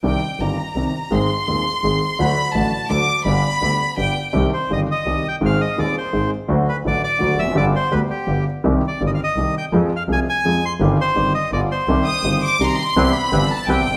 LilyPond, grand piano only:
\new Staff \with { instrumentName = "Grand piano" } { \clef bass \time 3/4 \key c \minor \tempo 4 = 167 <c, c ees g c' g'>8 r8 <g,, g, ees g c' g'>8 r8 <c, c ees g c' g'>8 r8 | <aes,, aes, ees aes c' aes'>8 r8 <ees,, ees, ees aes c' aes'>8 r8 <aes,, aes, ees aes c' aes'>8 r8 | <d, d fis a fis'>8 r8 <a,, a, d fis a fis'>8 r8 <d, d fis a fis'>8 r8 | <g,, g, d g b g'>8 r8 <d, d g b g'>8 r8 <g,, g, d g b g'>8 r8 |
<c, c ees g c' g'>8 r8 <g,, g, ees g c' g'>8 r8 <c, c ees g c' g'>8 r8 | <aes,, aes, ees aes c' aes'>8 r8 <ees,, ees, ees aes c' aes'>8 r8 <aes,, aes, ees aes c' aes'>8 r8 | <d, d fis a fis'>8 r8 <a,, a, d fis a fis'>8 r8 <d, d fis a fis'>8 r32 e,32 f,32 fis,32 | <g,, g, d g b g'>8 r8 <d, d g b g'>8 r8 <g,, g, d g b g'>8 r8 |
<c, c ees g c' g'>8 r8 <g,, g, ees g c' g'>8 r8 <c, c ees g c' g'>8 r8 | <f, f aes c' aes'>8 r8 <c, c f aes c' aes'>8 r8 <f, f aes c' aes'>8 r8 | <g,, g, ees g c' g'>8 r8 <g,, g, ees g c' g'>8 r8 <g,, g, d g b f'>8 r8 | <c, c ees g c' g'>8 r8 <g,, g, ees g c' g'>8 r8 <c, c ees g c' g'>8 r8 |
\key c \major <c, c e b c' g'>8 r8 <g,, g, e b c' g'>8 r8 <c, c e b c' g'>8 r32 fis,,32 r16 | }